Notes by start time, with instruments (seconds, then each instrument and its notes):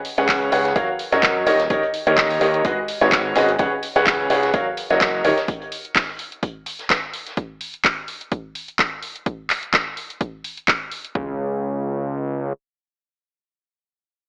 0.05 closed hi-hat, open hi-hat
0.18 analog synth bass C#2, upright piano C#4 G#4 B4 C#5 F#5, snare, closed hi-hat
0.29 kick, snare, clap, closed hi-hat
0.41 closed hi-hat
0.52 analog synth bass C#2, upright piano G#4 B4 C#5 F#5, closed hi-hat, open hi-hat
0.65 snare, closed hi-hat
0.75 analog synth bass F#1, upright piano F#3 F#4 A#4 C#5 F5, kick, closed hi-hat
0.99 closed hi-hat, open hi-hat
1.12 analog synth bass F#2, upright piano F#3 F#4 A#4 C#5 D#5, snare, closed hi-hat
1.23 kick, snare, clap, closed hi-hat
1.47 analog synth bass D#1, upright piano D#3 G4 A#4 C#5 D#5, snare, closed hi-hat, open hi-hat
1.59 snare, closed hi-hat
1.70 analog synth bass D#1, upright piano D#3 G4 A#4 C#5 D#5, kick, closed hi-hat
1.83 closed hi-hat
1.94 closed hi-hat, open hi-hat
2.07 analog synth bass D#2, upright piano D#3 G4 A#4 C#5 D#5, closed hi-hat
2.17 kick, snare, clap, closed hi-hat, open hi-hat
2.30 open hi-hat
2.41 analog synth bass D#2, upright piano G4 A#4 C#5 D#5, closed hi-hat, open hi-hat
2.54 closed hi-hat
2.65 analog synth bass G#1, upright piano G#3 F#4 G#4 B4 D#5, kick, closed hi-hat
2.88 closed hi-hat, open hi-hat
3.01 analog synth bass G#1, upright piano G#3 F#4 G#4 B4 C#5, snare, closed hi-hat
3.12 kick, snare, clap, closed hi-hat
3.35 analog synth bass G#1, upright piano C#4 F#4 G#4 B4 D#5, snare, closed hi-hat, open hi-hat
3.49 closed hi-hat
3.58 analog synth bass C#2, upright piano C#4 G#4 B4 C#5 F#5, kick, closed hi-hat
3.83 closed hi-hat, open hi-hat
3.95 analog synth bass C#2, upright piano C#4 G#4 B4 C#5 F#5, snare, closed hi-hat
4.06 kick, snare, clap, closed hi-hat
4.20 closed hi-hat
4.30 analog synth bass C#2, upright piano G#4 B4 C#5 F#5, closed hi-hat, open hi-hat
4.43 snare, closed hi-hat
4.54 analog synth bass F#1, upright piano F#3 F#4 A#4 C#5 F5, kick, closed hi-hat
4.77 closed hi-hat, open hi-hat
4.90 analog synth bass F#1, upright piano F#3 F#4 A#4 C#5 D#5, snare, closed hi-hat
5.01 kick, snare, clap, closed hi-hat
5.25 analog synth bass D#1, upright piano D#3 G4 A#4 C#5 D#5, snare, closed hi-hat, open hi-hat
5.37 snare, closed hi-hat
5.48 kick, closed hi-hat
5.62 closed hi-hat
5.72 closed hi-hat, open hi-hat
5.85 closed hi-hat
5.95 kick, snare, clap, closed hi-hat, open hi-hat
6.19 closed hi-hat, open hi-hat
6.32 closed hi-hat
6.43 kick, closed hi-hat
6.66 closed hi-hat, open hi-hat
6.79 snare, closed hi-hat
6.90 kick, snare, clap, closed hi-hat
7.13 closed hi-hat, open hi-hat
7.27 snare, closed hi-hat
7.37 kick, closed hi-hat
7.61 open hi-hat
7.74 closed hi-hat
7.84 kick, clap, closed hi-hat
8.08 open hi-hat
8.21 closed hi-hat
8.32 kick, closed hi-hat
8.55 open hi-hat
8.68 closed hi-hat
8.79 kick, clap, closed hi-hat
9.03 open hi-hat
9.16 closed hi-hat
9.26 kick, closed hi-hat
9.50 clap, open hi-hat
9.63 closed hi-hat
9.73 kick, clap, closed hi-hat
9.97 open hi-hat
10.10 closed hi-hat
10.21 kick, closed hi-hat
10.44 open hi-hat
10.57 closed hi-hat
10.68 kick, clap, closed hi-hat
10.92 open hi-hat
11.05 closed hi-hat
11.15 analog synth bass C#2, kick, floor tom